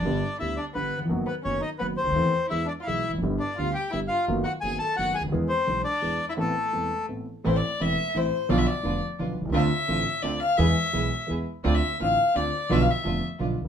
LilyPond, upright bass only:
\new Staff \with { instrumentName = "Upright bass" } { \clef bass \time 3/4 \key a \minor \tempo 4 = 171 g,,16. r8 r32 d,16. r8 r32 g,,16. r8 r32 | fis,,16. r8 r32 fis,,16. r8 r32 fis,,16. r16 cis,32 d,32 dis,32 | e,16. r8 r32 e,16. r8 r32 b,,16. r16 e,,32 f,,32 fis,,32 | g,,16. r8 r32 d,16. r8 r32 g,,16. r8 r32 |
fis,,16. r8 r32 fis,,16. r8 r32 fis,,16. r16 cis,32 d,32 dis,32 | e,16. r8 r32 b,,16. r8 r32 e,16. r8 r32 | r2. | a,,16. r8 r32 e,,16. r8 r32 a,,16. r8 r32 |
b,,16. r8 r32 f,,16. r8 r32 b,,16. r16 b,,32 c,32 cis,32 | d,16. r8 r32 a,,16. r8 r32 d,16. r8 r32 | e,16. r8 r32 b,,16. r8 r32 e,16. r8 r32 | d,16. r8 r32 a,,16. r8 r32 d,16. r8 r32 |
b,,16. r8 r32 f,,16. r8 r32 b,,16. r16 cis,32 r16 | }